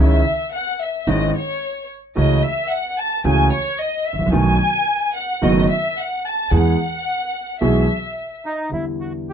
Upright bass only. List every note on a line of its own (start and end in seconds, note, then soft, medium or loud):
0.00 0.21 C#2 medium
1.07 1.30 G#1 medium
2.17 2.39 C#2 medium
3.24 3.47 C#2 loud
4.13 4.19 G#1 medium
4.20 4.26 A1 medium
4.27 4.33 A#1 medium
4.33 4.56 B1 medium
5.43 5.65 F#1 medium
6.51 6.74 E2 medium
7.62 7.85 B1 medium
8.72 9.33 E2 soft